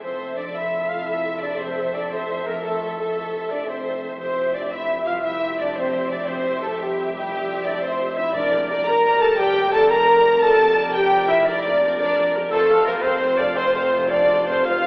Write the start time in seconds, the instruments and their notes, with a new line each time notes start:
Already playing: harp E4
0.01 double bass section F1, cello section F2, harp F3, french horn section C4, viola section A4 E5, flute C5, violin section C5, clarinet C5
0.35 french horn section D4, harp A4, flute D5, violin section D5, clarinet D5
0.52 french horn section E4, harp C5, flute E5, clarinet E5, violin section E5
0.73 harp E4
0.88 harp A3, french horn section F4, violin section F5, flute F5, clarinet F5
1.04 harp F3, french horn section E4, clarinet E5, flute E5, violin section E5
1.25 harp C4
1.40 french horn section D4, harp A4, flute D5, violin section D5, clarinet D5
1.57 french horn section C4, flute C5, violin section C5, clarinet C5, harp C5
1.77 harp E4
1.93 harp A3, french horn section D4, flute D5, clarinet D5, violin section D5
2.10 harp F3, french horn section C4, flute C5, violin section C5, clarinet C5
2.30 harp C4
2.46 french horn section A#3, harp A4, flute A#4, violin section A#4, clarinet A#4
2.63 french horn section A3, flute A4, violin section A4, clarinet A4, harp C5
2.82 harp E4
2.98 harp A3, french horn section A3, flute A4, violin section A4, clarinet A4
3.17 harp F3
3.34 harp C4
3.50 french horn section D4, harp A4, flute D5, violin section D5, clarinet D5
3.67 french horn section C4, flute C5, harp C5, violin section C5, clarinet C5
3.86 harp E4
4.03 harp A3
4.19 double bass section F1, cello section F2, harp F3, french horn section C4, viola section G4 E5, violin section C5, flute C5, clarinet C5
4.54 french horn section D4, harp G4, flute D5, violin section D5, clarinet D5
4.71 french horn section E4, harp C5, violin section E5, flute E5, clarinet E5
4.89 harp E4
5.06 harp G3, french horn section F4, flute F5, violin section F5, clarinet F5
5.23 harp F3, french horn section E4, flute E5, violin section E5, clarinet E5
5.42 harp C4
5.58 french horn section D4, harp G4, flute D5, violin section D5, clarinet D5
5.76 french horn section C4, flute C5, harp C5, violin section C5, clarinet C5
5.94 harp E4
6.10 harp G3, french horn section D4, violin section D5, flute D5, clarinet D5
6.27 harp F3, french horn section C4, flute C5, violin section C5, clarinet C5
6.45 harp C4
6.62 french horn section A3, harp G4, flute A4, violin section A4, clarinet A4
6.78 french horn section G3, flute G4, clarinet G4, violin section G4, harp C5
6.97 harp E4
7.13 french horn section G3, harp G3, flute G4, clarinet G4, violin section G4
7.31 harp F3
7.48 harp C4
7.65 french horn section D4, harp G4, violin section D5, flute D5, clarinet D5
7.82 french horn section C4, flute C5, clarinet C5, harp C5, violin section C5
8.00 harp E4
8.16 harp G3, french horn section E4, flute E5, clarinet E5, violin section E5
8.33 double bass section F1, timpani F2, cello section F2, harp F3, french horn section D4, viola section A#4 D5, flute D5, violin section D5, clarinet D5
8.52 harp A#3, viola section G4 A#4
8.68 french horn section D4, harp G4, viola section A#4 D5, flute D5, violin section D5, clarinet D5
8.85 viola section G4 A#4, french horn section A#4, harp A#4, flute A#5, violin section A#5, clarinet A#5
9.03 harp G4, viola section A#4 D5
9.20 harp G3, viola section G4 A#4, french horn section A4, violin section A5, flute A5, clarinet A5
9.37 harp F3, french horn section G4, viola section A#4 D5, flute G5, violin section G5, clarinet G5
9.55 harp A#3, viola section G4 A#4
9.71 harp G4, french horn section A4, viola section A#4 D5, flute A5, violin section A5, clarinet A5
9.89 viola section G4 A#4, french horn section A#4, violin section A#5, flute A#5, clarinet A#5
10.07 harp G4, viola section A#4 D5
10.25 harp G3, viola section G4 A#4
10.41 harp F3, french horn section A4, viola section A#4 D5, violin section A5, flute A5, clarinet A5
10.59 harp A#3, viola section G4 A#4
10.78 harp G4, viola section A#4 D5
10.94 french horn section G4, viola section G4 A#4, harp A#4, clarinet G5, violin section G5, flute G5
11.12 harp G4, viola section A#4 D5
11.28 harp G3, french horn section E4, viola section G4 A#4, clarinet E5, violin section E5, flute E5
11.46 harp F3, french horn section D4, viola section A#4 D5, flute D5, violin section D5, clarinet D5
11.64 harp A#3, viola section G4 A#4
11.81 harp G4, viola section A#4 D5
11.97 french horn section D4, viola section G4 A#4, harp A#4, violin section D5, flute D5, clarinet D5
12.17 harp G4, viola section A#4 D5
12.35 harp G3, viola section G4 A#4
12.50 double bass section F1, cello section F2, timpani F2, harp F3, french horn section A3, viola section F4 C5, flute A4, clarinet A4, violin section A4
12.58 timpani F2
12.66 timpani F2, harp C4, viola section A4 F5
12.74 timpani F2
12.80 timpani F2
12.85 timpani F2, french horn section A#3, viola section F4 C5, harp A4, flute A#4, clarinet A#4, violin section A#4
12.96 timpani F2
13.02 timpani F2, french horn section C4, viola section A4 F5, clarinet C5, flute C5, violin section C5, harp C5
13.11 timpani F2
13.19 timpani F2, viola section F4 C5, harp F4
13.26 timpani F2
13.34 timpani F2, flute D5
13.38 timpani F2, harp A3, french horn section D4, viola section A4 F5, clarinet D5, violin section D5
13.55 timpani F2, french horn section C4, harp C4, viola section F4 C5, flute C5, violin section C5, clarinet C5
13.72 timpani F2, harp A3, french horn section C4, viola section A4 F5, flute C5, clarinet C5, violin section C5
13.79 timpani F2
13.86 timpani F2
13.92 timpani F2, viola section F4 C5, harp A4
14.01 timpani F2
14.09 timpani F2, french horn section D4, viola section A4 F5, harp C5, flute D5, violin section D5, clarinet D5
14.16 timpani F2
14.25 timpani F2, viola section F4 C5, harp F4
14.32 timpani F2
14.39 timpani F2
14.46 timpani F2, harp A3, french horn section C4, viola section A4 F5, clarinet C5, flute C5, violin section C5
14.56 timpani F2
14.63 timpani F2, harp F3, viola section F4 C5, french horn section F4, violin section F5, clarinet F5, flute F5
14.71 timpani F2
14.79 timpani F2
14.83 harp C4, viola section A4 F5